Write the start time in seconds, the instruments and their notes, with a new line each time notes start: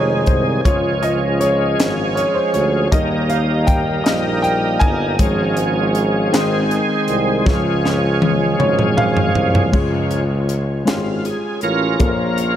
Already playing: tuba F1, tonewheel organ C3 D#3 G#3 G#4, upright piano C3 G#3 D#4 G#4 A#4 C5 C#5
0.26 tuba C2, upright piano C5, kick, closed hi-hat
0.65 tuba C#2, tonewheel organ F3 G#3 C#4 G#4, upright piano G#3 C#4 F4 C#5, kick, closed hi-hat
1.02 upright piano D#5, closed hi-hat
1.40 upright piano C#5, closed hi-hat
1.79 tuba G#1, snare, closed hi-hat
2.15 upright piano C#5, closed hi-hat
2.35 upright piano C5
2.54 tuba D2, upright piano C#5, closed hi-hat
2.92 tuba D#2, tonewheel organ G3 A#3 D#4 A#4, upright piano G3 A#3 D#4 D#5, kick, closed hi-hat
3.29 upright piano F5, closed hi-hat
3.67 upright piano G5, kick, closed hi-hat
4.04 tuba A#1, upright piano D#5, snare, closed hi-hat
4.42 upright piano G5, closed hi-hat
4.79 tuba G1, upright piano G#5, kick, closed hi-hat
5.19 tuba G#1, upright piano F3 G#3 C#4, tonewheel organ F3 G#3 C#4 G#4, kick, closed hi-hat
5.57 closed hi-hat
5.95 closed hi-hat
6.32 tuba G#1, upright piano D#3 G#3 C4, tonewheel organ D#3 G#3 C4 F#4, snare, closed hi-hat
6.40 tonewheel organ G#4
6.71 closed hi-hat
7.08 tuba C2, closed hi-hat
7.45 tuba C#2, tonewheel organ E3, upright piano F3 G#3 C#4, kick, snare
7.54 tonewheel organ F3
7.85 snare
8.22 high tom
8.59 tuba G#1, upright piano C#5, mid tom
8.79 mid tom
8.97 upright piano F5, mid tom
9.17 floor tom
9.35 tuba C2, floor tom
9.55 floor tom
9.72 tuba C#2, upright piano C#3 G#3 C#4 F4 G#4, tonewheel organ F3 G#3 C#4, kick, crash
10.11 closed hi-hat
10.49 closed hi-hat
10.85 tuba G#1, upright piano G#3 C#4 F4 G4, tonewheel organ F4, snare, closed hi-hat
10.94 upright piano G#4
11.25 tonewheel organ G#4, closed hi-hat
11.61 tuba A1, tonewheel organ C#4 F4 A#4, closed hi-hat
11.99 tuba A#1, upright piano A#2 A#3 C#4 F4 A4, tonewheel organ F3 A#3 C#4, kick, closed hi-hat
12.08 upright piano A#4
12.38 tonewheel organ A#4, closed hi-hat